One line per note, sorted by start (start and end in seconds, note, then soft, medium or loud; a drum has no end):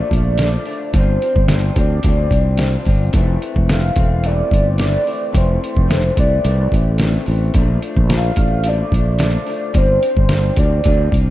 0.00 0.12 A#2 medium
0.00 0.12 F3 medium
0.00 0.11 A3 medium
0.00 0.41 D5 loud
0.11 0.56 A#1 medium
0.11 0.39 F3 soft
0.11 0.40 A3 soft
0.11 0.39 D4 medium
0.11 kick medium
0.11 closed hi-hat medium
0.38 0.67 A#2 soft
0.38 0.67 F3 soft
0.38 0.66 A3 medium
0.38 0.64 D4 medium
0.38 snare loud
0.38 closed hi-hat loud
0.42 0.92 D5 loud
0.65 0.93 F3 soft
0.65 0.94 A3 soft
0.65 0.94 D4 medium
0.65 open hi-hat medium
0.93 1.16 G1 loud
0.93 1.21 G2 medium
0.93 1.22 F3 medium
0.93 1.21 C4 medium
0.93 1.20 D4 medium
0.93 kick loud
0.93 closed hi-hat medium
0.98 1.82 C5 medium
1.21 1.48 F3 soft
1.21 1.49 C4 medium
1.21 1.49 D4 medium
1.21 closed hi-hat medium
1.36 1.69 G1 loud
1.36 kick medium
1.48 1.76 G2 medium
1.48 1.77 F3 medium
1.48 1.76 C4 medium
1.48 1.74 D4 medium
1.48 snare loud
1.48 closed hi-hat medium
1.76 1.99 D2 medium
1.76 2.04 F3 soft
1.76 2.04 C4 medium
1.76 2.04 D4 medium
1.76 kick medium
1.76 closed hi-hat medium
1.80 2.89 D5 medium
2.03 2.27 D2 medium
2.03 2.32 G2 medium
2.03 2.32 F3 loud
2.03 2.31 C4 medium
2.03 2.31 D4 medium
2.03 kick loud
2.03 closed hi-hat loud
2.31 2.75 C2 medium
2.31 2.57 F3 soft
2.31 2.58 C4 soft
2.31 2.59 D4 soft
2.31 kick medium
2.31 closed hi-hat medium
2.57 2.86 G2 medium
2.57 2.86 F3 medium
2.57 2.85 C4 medium
2.57 2.84 D4 medium
2.57 snare loud
2.57 closed hi-hat medium
2.85 3.09 G1 loud
2.85 3.13 F3 soft
2.85 3.13 C4 medium
2.85 3.13 D4 medium
2.85 kick medium
2.85 open hi-hat soft
3.13 3.36 F1 loud
3.13 3.41 F2 medium
3.13 3.41 E3 loud
3.13 3.40 A3 medium
3.13 3.39 C4 medium
3.13 kick loud
3.13 closed hi-hat medium
3.40 3.68 E3 medium
3.40 3.69 A3 medium
3.40 3.69 C4 medium
3.40 closed hi-hat medium
3.56 3.89 F1 loud
3.56 kick loud
3.69 3.97 F2 medium
3.69 3.97 E3 medium
3.69 3.97 A3 medium
3.69 3.95 C4 medium
3.69 4.28 F5 loud
3.69 snare loud
3.69 closed hi-hat loud
3.96 4.41 E1 medium
3.96 4.23 E3 medium
3.96 4.24 A3 medium
3.96 4.24 C4 medium
3.96 kick loud
3.96 closed hi-hat medium
4.24 4.52 F2 medium
4.24 4.52 E3 medium
4.24 4.51 A3 loud
4.24 4.51 C4 medium
4.24 4.80 D5 loud
4.24 closed hi-hat loud
4.51 4.96 G1 medium
4.51 4.77 E3 soft
4.51 4.79 A3 soft
4.51 4.79 C4 medium
4.51 kick medium
4.51 closed hi-hat medium
4.77 5.06 F2 medium
4.77 5.06 E3 medium
4.77 5.05 A3 medium
4.77 5.03 C4 medium
4.77 5.39 D5 loud
4.77 snare loud
4.77 closed hi-hat medium
5.04 5.31 E3 soft
5.04 5.32 A3 soft
5.04 5.33 C4 medium
5.04 open hi-hat soft
5.32 5.57 F1 loud
5.32 5.61 F2 medium
5.32 5.61 E3 medium
5.32 5.60 A3 medium
5.32 5.59 C4 medium
5.32 kick loud
5.32 closed hi-hat medium
5.37 6.18 C5 loud
5.60 5.87 E3 soft
5.60 5.88 A3 soft
5.60 5.89 C4 medium
5.60 closed hi-hat medium
5.77 6.09 F1 loud
5.77 kick medium
5.88 6.16 F2 medium
5.88 6.17 E3 medium
5.88 6.15 A3 medium
5.88 6.15 C4 medium
5.88 snare loud
5.88 closed hi-hat medium
6.16 6.39 C2 medium
6.16 6.43 E3 soft
6.16 6.44 A3 medium
6.16 6.44 C4 medium
6.16 7.24 D5 medium
6.16 kick medium
6.16 closed hi-hat medium
6.44 6.67 C2 loud
6.44 6.72 F2 medium
6.44 6.72 E3 medium
6.44 6.72 A3 medium
6.44 6.70 C4 medium
6.44 closed hi-hat medium
6.72 7.16 A1 loud
6.72 6.98 E3 soft
6.72 6.99 A3 soft
6.72 6.99 C4 medium
6.72 kick medium
6.72 closed hi-hat medium
6.98 7.26 F2 medium
6.98 7.27 E3 medium
6.98 7.26 A3 medium
6.98 7.25 C4 medium
6.98 snare loud
6.98 closed hi-hat medium
7.14 snare soft
7.26 7.50 A1 loud
7.26 7.54 E3 soft
7.26 7.53 A3 soft
7.26 7.54 C4 medium
7.26 open hi-hat soft
7.54 7.77 A#1 loud
7.54 7.82 A#2 medium
7.54 7.81 F3 medium
7.54 7.81 A3 loud
7.54 7.79 D4 medium
7.54 kick loud
7.54 closed hi-hat medium
7.80 8.08 F3 soft
7.80 8.09 A3 medium
7.80 8.09 D4 medium
7.80 closed hi-hat medium
7.97 8.30 A#1 loud
7.97 kick medium
8.08 8.36 A#2 medium
8.08 8.37 F3 medium
8.08 8.37 A3 medium
8.08 8.36 D4 medium
8.08 snare loud
8.08 closed hi-hat loud
8.16 8.70 F5 loud
8.36 8.81 A1 medium
8.36 8.65 A3 soft
8.36 8.65 D4 medium
8.36 kick medium
8.36 closed hi-hat medium
8.40 8.64 F3 soft
8.64 8.93 A#2 medium
8.64 8.93 F3 medium
8.64 8.92 A3 loud
8.64 8.91 D4 loud
8.64 closed hi-hat loud
8.68 9.22 D5 loud
8.92 9.36 A#1 medium
8.92 9.19 F3 soft
8.92 9.19 A3 soft
8.92 9.20 D4 medium
8.92 kick medium
8.92 closed hi-hat medium
9.18 9.47 A#2 medium
9.18 9.47 F3 medium
9.18 9.47 A3 medium
9.18 9.45 D4 medium
9.18 snare loud
9.18 closed hi-hat medium
9.24 9.79 D5 loud
9.46 9.72 F3 soft
9.46 9.73 A3 soft
9.46 9.74 D4 medium
9.46 open hi-hat medium
9.73 9.97 G1 loud
9.73 10.01 G2 medium
9.73 10.02 F3 medium
9.73 10.02 C4 medium
9.73 10.00 D4 medium
9.73 kick loud
9.73 closed hi-hat medium
9.78 10.61 C5 loud
10.01 10.28 F3 soft
10.01 10.29 C4 medium
10.01 10.29 D4 medium
10.01 closed hi-hat medium
10.17 10.50 G1 loud
10.17 kick medium
10.28 10.56 G2 medium
10.28 10.57 F3 medium
10.28 10.57 C4 medium
10.28 10.55 D4 medium
10.28 snare loud
10.28 closed hi-hat medium
10.56 10.80 D2 medium
10.56 10.83 F3 soft
10.56 10.84 C4 soft
10.56 10.84 D4 medium
10.56 11.30 D5 medium
10.56 kick loud
10.56 closed hi-hat medium
10.84 11.07 D2 loud
10.84 11.12 G2 medium
10.84 11.12 F3 medium
10.84 11.12 C4 medium
10.84 11.10 D4 medium
10.84 kick loud
10.84 closed hi-hat medium
11.11 11.30 C2 medium
11.11 11.30 F3 soft
11.11 11.30 C4 soft
11.11 11.30 D4 medium
11.11 kick medium
11.11 closed hi-hat medium